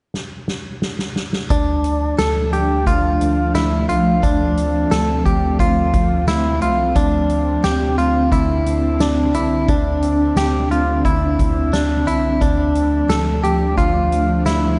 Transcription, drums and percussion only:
0.14 snare
0.48 snare
0.82 snare
0.99 snare
1.16 snare
1.33 snare
1.50 kick, closed hi-hat
1.84 closed hi-hat
2.18 snare, closed hi-hat, tambourine
2.53 closed hi-hat
2.87 kick, closed hi-hat
3.21 closed hi-hat
3.55 snare, closed hi-hat, tambourine
3.89 closed hi-hat
4.23 kick, closed hi-hat
4.57 closed hi-hat
4.91 snare, closed hi-hat, tambourine
5.26 kick, closed hi-hat
5.59 kick, closed hi-hat
5.94 kick, closed hi-hat
6.28 snare, closed hi-hat, tambourine
6.62 closed hi-hat
6.96 kick, closed hi-hat
7.30 closed hi-hat
7.64 snare, closed hi-hat, tambourine
7.99 closed hi-hat
8.32 kick, closed hi-hat
8.66 closed hi-hat
9.00 snare, closed hi-hat, tambourine
9.34 closed hi-hat
9.68 kick, closed hi-hat
10.02 closed hi-hat
10.36 snare, closed hi-hat, tambourine
10.71 closed hi-hat
11.05 kick, closed hi-hat
11.39 kick, closed hi-hat
11.73 snare, closed hi-hat, tambourine
12.08 closed hi-hat
12.41 kick, closed hi-hat
12.75 closed hi-hat
13.10 snare, closed hi-hat, tambourine
13.44 closed hi-hat
13.78 kick, closed hi-hat
14.12 closed hi-hat
14.46 snare, closed hi-hat, tambourine

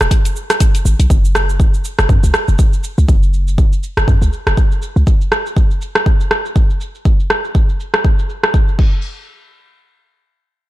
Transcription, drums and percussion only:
0.01 cross-stick, cabasa
0.11 kick, closed hi-hat, cabasa
0.25 closed hi-hat, cabasa
0.36 cabasa
0.50 cross-stick, closed hi-hat, cabasa
0.60 kick, closed hi-hat, cabasa
0.75 closed hi-hat, cabasa
0.86 cabasa
1.00 closed hi-hat, cabasa
1.10 kick, cabasa
1.25 cabasa
1.35 cross-stick, cabasa
1.49 cabasa
1.60 kick, cabasa
1.74 cabasa
1.85 cabasa
1.99 cross-stick, cabasa
2.09 kick, cabasa
2.24 cabasa
2.34 cross-stick, cabasa
2.48 cabasa
2.59 kick, cabasa
2.73 cabasa
2.84 cabasa
2.98 cabasa
3.09 kick, cabasa
3.23 cabasa
3.34 cabasa
3.48 cabasa
3.58 kick, cabasa
3.73 cabasa
3.83 cabasa
3.97 cross-stick, cabasa
4.08 kick, cabasa
4.22 cabasa
4.33 cabasa
4.47 cross-stick, cabasa
4.57 kick, cabasa
4.72 cabasa
4.82 cabasa
4.97 cabasa
5.07 kick, cabasa
5.21 cabasa
5.32 cross-stick, cabasa
5.46 cabasa
5.57 kick, cabasa
5.71 cabasa
5.82 cabasa
5.95 cross-stick, cabasa
6.06 kick, cabasa
6.21 cabasa
6.31 cross-stick, cabasa
6.45 cabasa
6.56 kick, cabasa
6.70 cabasa
6.81 cabasa
6.95 cabasa
7.05 kick, cabasa
7.20 cabasa
7.30 cross-stick, cabasa
7.45 cabasa
7.55 kick, cabasa
7.69 cabasa
7.80 cabasa
7.94 cross-stick, cabasa
8.04 kick, cabasa
8.19 cabasa
8.29 cabasa
8.43 cross-stick, cabasa
8.54 kick, cabasa
8.68 cabasa
8.79 kick, crash

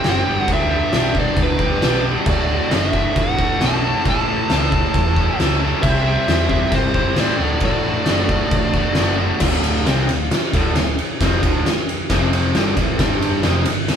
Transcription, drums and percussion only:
0.04 snare, crash
0.48 kick, crash
0.93 snare, crash
1.15 kick
1.37 kick, crash
1.59 kick
1.82 snare, crash
2.26 kick, crash
2.71 snare, crash
2.93 kick
3.16 kick, crash
3.39 kick
3.61 snare, crash
4.05 kick, crash
4.50 snare, crash
4.72 kick
4.94 kick, crash
5.16 kick
5.40 snare, crash
5.83 kick, crash
6.28 snare, crash
6.50 kick
6.72 kick, crash
6.94 kick
7.16 snare, crash
7.60 kick, crash
8.06 snare, crash
8.29 kick
8.51 kick, crash
8.74 kick
8.95 snare, crash
9.40 kick, snare, crash
9.64 ride
9.87 snare, ride
10.09 ride
10.31 snare, ride
10.54 kick, ride
10.75 snare, ride
10.99 ride
11.21 kick, snare, ride
11.43 kick, ride
11.66 snare, ride
11.89 ride
12.10 kick, snare, ride
12.33 ride
12.55 snare, ride
12.77 kick, ride
12.99 kick, snare, ride
13.22 ride
13.43 snare, ride
13.65 ride
13.88 snare, ride

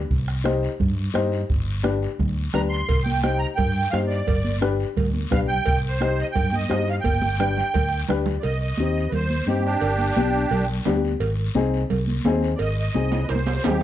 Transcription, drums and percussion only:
0.10 bombo low, long guiro
0.28 bombo rim
0.45 bombo rim, high conga, short guiro
0.63 short guiro
0.80 bombo low, high conga, low conga, long guiro
1.14 bombo rim, high conga, short guiro
1.32 short guiro
1.49 bombo low, high conga, long guiro
1.84 bombo rim, high conga, short guiro
2.02 short guiro
2.19 bombo low, high conga, low conga, long guiro
2.54 bombo rim, high conga, low conga, short guiro
2.72 short guiro
2.89 bombo low, cowbell, high conga, long guiro
3.06 high conga
3.23 bombo rim, high conga, short guiro
3.41 short guiro
3.58 bombo low, cowbell, high conga, low conga, long guiro
3.93 bombo rim, high conga, short guiro
4.11 short guiro
4.27 bombo low, cowbell, high conga, low conga, long guiro
4.44 high conga
4.62 bombo rim, high conga, short guiro
4.80 short guiro
4.97 bombo low, cowbell, high conga, low conga, long guiro
5.14 high conga
5.31 bombo low, bombo rim, high conga, low conga, short guiro
5.49 short guiro
5.66 bombo low, cowbell, high conga, long guiro
6.01 bombo rim, high conga, short guiro
6.19 short guiro
6.35 bombo low, cowbell, high conga, low conga, long guiro
6.53 high conga
6.69 bombo rim, high conga, low timbale, short guiro
6.88 short guiro
7.04 bombo low, cowbell, high conga, long guiro
7.22 high conga
7.40 bombo rim, low conga, short guiro
7.57 low conga, short guiro
7.74 bombo low, cowbell, low conga, long guiro
8.09 bombo rim, low conga, short guiro
8.26 low conga, short guiro
8.43 cowbell, high conga, long guiro
8.78 high conga, short guiro
8.97 short guiro
9.12 cowbell, high conga, low conga, long guiro
9.30 high conga
9.47 high conga, short guiro
9.65 short guiro
9.81 cowbell, high conga, long guiro
9.98 high conga
10.17 high conga, short guiro
10.35 short guiro
10.51 cowbell, high conga, low conga, long guiro
10.85 high conga, low conga, low timbale, short guiro
11.04 short guiro
11.20 cowbell, high conga, long guiro
11.55 high conga, short guiro
11.74 short guiro
11.90 cowbell, high conga, low conga, long guiro
12.07 high conga
12.25 high conga, low timbale, short guiro
12.43 short guiro
12.59 cowbell, high conga, long guiro
12.94 high conga, short guiro
13.12 high conga, high timbale, short guiro
13.29 cowbell, high timbale, long guiro
13.35 high conga
13.46 high conga, low timbale
13.64 low timbale, short guiro
13.70 low conga

